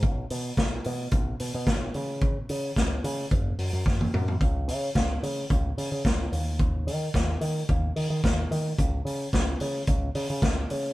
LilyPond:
<<
  \new Staff \with { instrumentName = "Picked electric bass" } { \clef bass \time 4/4 \key cis \dorian \tempo 4 = 110 b,,8 b,8 b,,8 b,8 b,,8 b,16 b,16 b,,8 cis8~ | cis8 cis8 cis,8 cis8 fis,,8 fis,16 fis,16 fis,,8 fis,8 | cis,8 cis8 cis,8 cis8 cis,8 cis16 cis16 cis,8 dis,8~ | dis,8 dis8 dis,8 dis8 dis,8 dis16 dis16 dis,8 dis8 |
cis,8 cis8 cis,8 cis8 cis,8 cis16 cis16 cis,8 cis8 | }
  \new DrumStaff \with { instrumentName = "Drums" } \drummode { \time 4/4 <hh bd>8 hho8 <hh bd sn>8 hho8 <hh bd>8 hho8 <hh bd sn>8 hho8 | <hh bd>8 hho8 <hh bd sn>8 hho8 <hh bd>8 hho8 <bd sn>16 tommh16 toml16 tomfh16 | <hh bd>8 hho8 <hh bd sn>8 hho8 <hh bd>8 hho8 <hh bd sn>8 hho8 | <hh bd>8 hho8 <hh bd sn>8 hho8 <hh bd>8 hho8 <hh bd sn>8 hho8 |
<hh bd>8 hho8 <hh bd sn>8 hho8 <hh bd>8 hho8 <hh bd sn>8 hho8 | }
>>